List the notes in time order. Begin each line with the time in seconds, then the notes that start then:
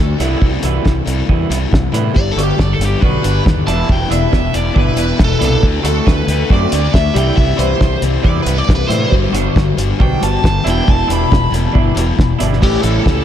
Already playing: D2 D3 A3 F#4
0.18 C2 C3 E3 G3 B3 E4, snare, closed hi-hat
0.40 C2 C3 E3 G3, kick
0.63 C2 C3 E3 G3 B3 E4, closed hi-hat
0.85 C2 C3 E3, kick, snare
1.05 C2 C3 E3 G3, closed hi-hat
1.28 E2 C3 E3 G3 B3 E4, kick
1.50 C2 C3 E3 G3, closed hi-hat
1.70 C2 C3 E3, kick, snare
1.92 A2 C3 E3 G3 B3 E4, closed hi-hat
2.13 G1 G2 D3 G3 G4 D5, kick
2.32 A4
2.36 G1 G2 D3 G3 B3 D4 F#4, closed hi-hat
2.43 G4
2.58 G1 G2 D3 D5, kick, snare
2.73 A4
2.79 G1 G2 D3 G3, closed hi-hat
2.85 G4
3.00 B1 G2 D3 G3 B3 D4 F#4 B4, kick
3.22 G1 G2 D3 G3, closed hi-hat
3.45 D#2 G2 D3, kick, snare
3.67 E1 E2 B2 E3 G3 D4 E4 A5, closed hi-hat
3.88 E1 E2 B2 E3 G5, kick
4.10 E1 E2 B2 E3 G3 D4 E4 E5, closed hi-hat
4.31 E1 E2 B2, kick, snare
4.53 E1 E2 B2 E3 D5, closed hi-hat
4.74 G1 E2 B2 E3 G3 D4 E4 B4, kick
4.96 E1 E2 B2 E3 B4, closed hi-hat
5.19 E1 E2 B2, kick, snare
5.24 A4
5.39 C2 E2 B2 E3 G3 D4 E4, closed hi-hat
5.45 A4
5.63 D2 D3 A3 D4 A4, kick
5.83 D2 D3 A3 C4 F#4 A4, closed hi-hat
6.06 D2 D3 A3 B4, kick, snare
6.27 D2 D3 A3 D4, closed hi-hat
6.50 F#2 D3 A3 C4 F#4 D5, kick
6.72 D2 D3 A3 D4, closed hi-hat
6.93 D2 D3 A3 E5, kick, snare
7.14 C2 C3 E3 G3 B3 E4 G4, closed hi-hat
7.18 G5
7.37 C2 C3 E3 G3 E5, kick
7.57 C2 C3 E3 G3 B3 E4 C5, closed hi-hat
7.81 C2 C3 E3, kick, snare
8.02 C2 C3 E3 G3, closed hi-hat
8.23 E2 C3 E3 G3 B3 E4 D5, kick
8.42 C2 B4
8.46 C3 E3 G3, closed hi-hat
8.58 D5
8.69 C2 C3 E3, kick, snare
8.75 B4
8.88 A2 E3 G3 B3 E4 C5, snare, closed hi-hat
8.92 C3 E3
9.10 G1 G2 D3 G3 F#4, kick
9.32 G1 G2 D3 G3 B3 D4 F#4, closed hi-hat
9.56 G1 G2 D3, kick, snare
9.77 G1 G2 D3 G3, closed hi-hat
9.99 B1 G2 D3 G3 B3 D4 F#4 G5, kick
10.21 G1 G2 D3 G3 A5, closed hi-hat
10.43 G1 G2 D3, kick, snare
10.63 E1 E2 B2 E3 G3 D4 E4, closed hi-hat
10.70 G5
10.87 E1 E2 B2 E3, kick
10.91 A5
11.08 E1 E2 B2 E3 G3 D4 E4, closed hi-hat
11.13 B5
11.31 E1 E2 B2, kick, snare
11.50 E1 E2 B2 E3, closed hi-hat
11.73 G1 E2 B2 E3 G3 D4 E4, kick
11.95 E1 E2 B2 E3, closed hi-hat
12.17 E1 E2 B2, kick, snare
12.39 G1 E2 B2 E3 G3 D4 E4, snare, closed hi-hat
12.53 snare
12.60 A1 A2 E3 G3 C#4 E4 G4, kick, crash
12.82 A1 G3 A4, closed hi-hat
13.06 C#2 C#4, kick, snare